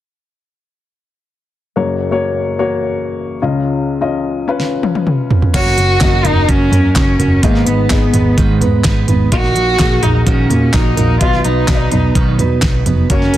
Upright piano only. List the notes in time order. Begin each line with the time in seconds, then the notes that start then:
1.76 F#1 F#2 A#3 F#4 C#5
2.11 A#3 F#4 C#5
2.59 A#3 F#4 C#5
3.42 C#2 C#3 C#4 F4 D#5
4.01 C#4 F4 D#5
4.48 C#4 F4 B4
5.54 A#3 F#4 C#5
6.02 A#3 F#4 D#5
7.44 G#2 B3 G#4 D#5
7.91 B3 G#4 D#5
9.32 A#2 A#3 F#4 D#5
9.79 A#3 F#4 G#4
11.21 B2 B3 F#4 D#5
11.69 B3 F#4 D5
11.75 D#5
13.10 A#3 F#4 C#5